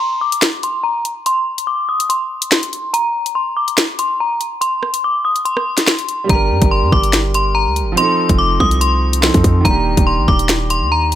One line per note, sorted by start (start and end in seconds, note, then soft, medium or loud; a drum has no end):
0.00 0.20 C6 medium
0.21 0.41 D6 medium
0.32 closed hi-hat medium
0.42 finger snap medium
0.42 snare loud
0.42 closed hi-hat medium
0.63 0.83 C6 medium
0.63 closed hi-hat medium
0.83 1.03 A#5 medium
1.05 closed hi-hat medium
1.26 1.66 C6 loud
1.26 closed hi-hat medium
1.58 closed hi-hat medium
1.67 1.87 D6 medium
1.89 2.08 D#6 medium
2.00 closed hi-hat medium
2.10 2.90 C6 medium
2.10 closed hi-hat medium
2.42 closed hi-hat loud
2.52 finger snap loud
2.52 snare loud
2.63 closed hi-hat medium
2.73 closed hi-hat medium
2.94 3.33 A#5 loud
2.94 closed hi-hat medium
3.26 closed hi-hat medium
3.35 3.55 C6 medium
3.57 3.76 D6 medium
3.68 closed hi-hat medium
3.78 finger snap loud
3.78 snare loud
3.78 closed hi-hat medium
3.99 4.18 C6 medium
3.99 closed hi-hat medium
4.20 4.40 A#5 medium
4.41 closed hi-hat medium
4.61 5.01 C6 loud
4.61 closed hi-hat medium
4.83 cross-stick medium
4.94 closed hi-hat medium
5.04 5.24 D6 medium
5.25 5.44 D#6 medium
5.36 closed hi-hat medium
5.45 6.25 C6 medium
5.45 closed hi-hat medium
5.57 cross-stick medium
5.78 snare medium
5.78 closed hi-hat loud
5.87 finger snap loud
5.87 snare loud
5.99 closed hi-hat medium
6.09 closed hi-hat medium
6.24 7.91 G3 medium
6.24 7.93 D4 medium
6.29 6.52 G1 loud
6.29 7.95 G4 medium
6.29 6.69 A#5 loud
6.29 kick loud
6.29 closed hi-hat medium
6.34 7.96 A#4 medium
6.50 6.61 G2 loud
6.62 6.84 G1 loud
6.62 kick loud
6.62 closed hi-hat medium
6.71 6.91 C6 medium
6.83 6.92 G2 loud
6.92 7.68 G1 loud
6.92 7.12 D6 medium
6.92 kick medium
7.03 closed hi-hat medium
7.13 finger snap loud
7.13 snare loud
7.13 closed hi-hat medium
7.34 7.54 C6 medium
7.34 closed hi-hat medium
7.55 7.75 A#5 medium
7.66 7.83 D2 loud
7.76 closed hi-hat medium
7.82 7.97 G1 loud
7.92 9.18 F3 medium
7.92 9.20 C4 medium
7.97 9.21 D#4 medium
7.97 8.37 C6 loud
7.97 closed hi-hat medium
8.02 9.23 A4 medium
8.29 8.59 F1 loud
8.29 kick loud
8.29 closed hi-hat medium
8.38 8.58 D6 medium
8.60 9.31 C2 loud
8.60 8.80 D#6 medium
8.60 kick medium
8.71 closed hi-hat medium
8.81 9.61 C6 medium
8.81 closed hi-hat medium
9.13 closed hi-hat loud
9.21 9.64 F3 medium
9.21 9.65 C4 soft
9.21 9.66 D#4 soft
9.21 finger snap loud
9.21 snare loud
9.26 9.67 A4 medium
9.34 9.44 F2 loud
9.34 kick medium
9.34 closed hi-hat medium
9.44 9.64 F2 loud
9.44 kick medium
9.44 closed hi-hat medium
9.60 11.15 D#3 medium
9.60 11.15 A#3 medium
9.65 9.96 D#1 loud
9.65 11.15 D4 medium
9.65 10.04 A#5 loud
9.65 kick loud
9.65 closed hi-hat medium
9.71 11.15 G4 medium
9.97 10.20 D#1 loud
9.97 kick loud
9.97 closed hi-hat medium
10.07 10.26 C6 medium
10.18 10.28 A#1 loud
10.28 10.83 D#1 loud
10.28 10.48 D6 medium
10.28 kick medium
10.39 closed hi-hat medium
10.49 finger snap medium
10.49 snare loud
10.49 closed hi-hat medium
10.70 10.90 C6 medium
10.70 closed hi-hat medium
10.81 11.15 D#2 medium
10.92 11.11 A#5 medium
11.12 closed hi-hat medium